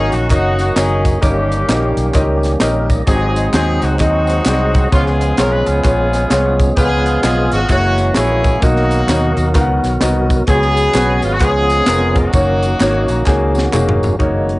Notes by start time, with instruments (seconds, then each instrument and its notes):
Already playing: tonewheel organ D#3 F#3 A#3 C#4 F#4, grand piano C#4 D#4 F#4 A#4 D#5, horn section C#4 D#4 G#4
0.12 fingered electric bass A#1, horn section F#4, closed hi-hat, tambourine
0.30 fingered electric bass F#1, horn section A#3 D#4 F#4, grand piano C#4 D#4 F#4 A#4 D#5, kick, clap, closed hi-hat, tambourine
0.59 snare, closed hi-hat, tambourine
0.76 fingered electric bass F#1, grand piano C#4 D#4 F#4 A#4 D#5, horn section C#4 D#4 G#4, snare, clap, closed hi-hat, tambourine
1.05 kick, closed hi-hat, tambourine
1.21 fingered electric bass G1, grand piano G2 C#4 D#4 G4 A#4 D#5, tonewheel organ D#3 G3 A#3 C#4 G4, horn section A#3 C#4 G4, kick, closed hi-hat, tambourine
1.52 closed hi-hat, tambourine
1.68 fingered electric bass A#1, grand piano C#4 D#4 F#4 A#4 D#5, snare, clap, closed hi-hat, tambourine
1.74 grand piano G4
1.97 fingered electric bass B1, closed hi-hat, tambourine
2.14 fingered electric bass C#2, grand piano C#4 D#4 F4 A#4 D#5, kick, clap, closed hi-hat, tambourine
2.20 grand piano G4
2.43 snare, closed hi-hat, tambourine
2.60 fingered electric bass A#1, grand piano C#4 D#4 G4 A#4 D#5, tonewheel organ C#4 A#4, snare, clap, closed hi-hat, tambourine
2.90 tonewheel organ G4 D#5, kick, closed hi-hat, tambourine
3.06 fingered electric bass G#1, grand piano G#2 C4 D#4 F#4 G#4 D#5, tonewheel organ F#3 G#3 C4 D#4 G#4, horn section C4 D#4 G#4, kick, closed hi-hat, tambourine
3.36 closed hi-hat, tambourine
3.53 fingered electric bass D#2, grand piano C4 D#4 F#4 G#4 C5, horn section G#4, snare, clap, closed hi-hat, tambourine
3.82 fingered electric bass C#2, horn section F#4, closed hi-hat, tambourine
3.99 fingered electric bass D#2, grand piano C4 D#4 F#4 G#4 D#5, horn section C4 D#4 F#4, kick, clap, closed hi-hat, tambourine
4.27 closed hi-hat, tambourine
4.46 fingered electric bass C2, grand piano C4 D#4 F#4 G#4 D5, snare, clap, closed hi-hat, tambourine
4.53 grand piano D#5
4.74 kick, closed hi-hat, tambourine
4.91 fingered electric bass C#2, grand piano C#3 B3 C#4 F4 G#4 C#5, tonewheel organ F3 G#3 B3 C#4 G#4, horn section G#3 B3 F4, kick, closed hi-hat, tambourine
5.07 horn section B3 F4 G#4, snare
5.21 closed hi-hat, tambourine
5.37 fingered electric bass B1, grand piano B3 C#4 F4 G#4 C#5, horn section A#4, snare, clap, closed hi-hat, tambourine
5.53 horn section B4
5.66 fingered electric bass C#2, horn section B3 F4 G#4, closed hi-hat, tambourine
5.84 fingered electric bass A#1, grand piano B3 C#4 F4 G#4 C#5, kick, clap, closed hi-hat, tambourine
6.13 snare, closed hi-hat, tambourine
6.30 fingered electric bass C2, grand piano B3 C#4 F4 G#4 C#5, snare, clap, closed hi-hat, tambourine
6.59 kick, closed hi-hat, tambourine
6.76 fingered electric bass C#2, grand piano C#3 B3 C#4 F4 G#4 B4, horn section B3 F4 G#4, kick, closed hi-hat, tambourine
7.06 closed hi-hat, tambourine
7.23 fingered electric bass B1, grand piano B3 C#4 F4 G#4 D#5, horn section G#4, snare, clap, closed hi-hat, tambourine
7.52 fingered electric bass G#1, horn section F#4, closed hi-hat, tambourine
7.69 fingered electric bass F#1, tonewheel organ E3 G#3 A3 C#4 F#4, grand piano A#3 E4 F#4 G#4 C#5, horn section A#3 C#4 F#4, kick, clap, closed hi-hat, tambourine
7.76 tonewheel organ A#3
7.98 snare, closed hi-hat, tambourine
8.14 fingered electric bass A#1, grand piano A#3 E4 F#4 G#4 C#5, horn section C#4 E4 G#4, snare, clap, closed hi-hat, tambourine
8.44 kick, closed hi-hat, tambourine
8.62 fingered electric bass B1, grand piano B2 A#3 D#4 F#4 A#4 D#5, tonewheel organ B2 D#3 F#3 F4 A#4, horn section A#3 D#4 F#4, kick, closed hi-hat, tambourine
8.68 tonewheel organ F#4
8.76 snare
8.91 closed hi-hat, tambourine
9.07 fingered electric bass D#2, grand piano B2 D#4 F#4 A#4 C#5, snare, clap, closed hi-hat, tambourine
9.14 grand piano D#5
9.37 fingered electric bass D#2, closed hi-hat, tambourine
9.54 fingered electric bass C#2, grand piano B3 D#4 F#4 A#4 F5, kick, clap, closed hi-hat, tambourine
9.61 grand piano F#5
9.84 fingered electric bass B1, snare, closed hi-hat, tambourine
10.01 fingered electric bass C2, grand piano B3 D#4 F#4 A#4 D#5, snare, clap, closed hi-hat, tambourine
10.30 kick, closed hi-hat, tambourine
10.47 fingered electric bass C#2, grand piano C#3 B3 C#4 F4 G#4 C#5, tonewheel organ F3 G#3 B3 C#4 G#4, horn section B3 G#4, kick, closed hi-hat, tambourine
10.53 tonewheel organ F#3, grand piano F#4
10.62 snare
10.77 closed hi-hat, tambourine
10.94 fingered electric bass B1, grand piano B3 C#4 F#4 G#4 B4, snare, clap, closed hi-hat, tambourine
11.22 fingered electric bass G#1, horn section F4, closed hi-hat, tambourine
11.33 horn section F#4
11.40 fingered electric bass C#2, grand piano C#3 B3 C#4 F4 G#4 B4, tonewheel organ F3 G#3 B3 C#4 G#4, horn section B3 F4 G#4, kick, clap, closed hi-hat, tambourine
11.46 grand piano C#5
11.69 snare, closed hi-hat, tambourine
11.86 fingered electric bass F1, grand piano B3 C#4 F4 G#4 A#4, snare, clap, closed hi-hat, tambourine
12.15 horn section A#3 D#4 F#4, kick, closed hi-hat, tambourine
12.33 fingered electric bass F#1, tonewheel organ D#3 F#3 A#3 C#4 F#4, grand piano A#3 C#4 D#4 F#4 C#5, kick, closed hi-hat, tambourine
12.63 closed hi-hat, tambourine
12.80 fingered electric bass G#1, grand piano A#3 C#4 D#4 F#4 C#5, snare, clap, closed hi-hat, tambourine
13.08 fingered electric bass A#1, grand piano A#5, closed hi-hat, tambourine
13.26 fingered electric bass C#2, grand piano A#3 C#4 D#4 F#4 G#4 G#5, kick, snare, clap, tambourine
13.55 snare, tambourine
13.64 grand piano F#5
13.72 fingered electric bass F1, grand piano A#3 C#4 D#4 F#4 G#4 F5, clap, mid tom, tambourine
13.89 floor tom
14.03 floor tom, tambourine
14.19 fingered electric bass F#1, tonewheel organ D#3 G#3 A#3, french horn section F#3 A#3 C#4 D#4, grand piano A#3 D#4 F#4 C#5, kick, closed hi-hat
14.49 closed hi-hat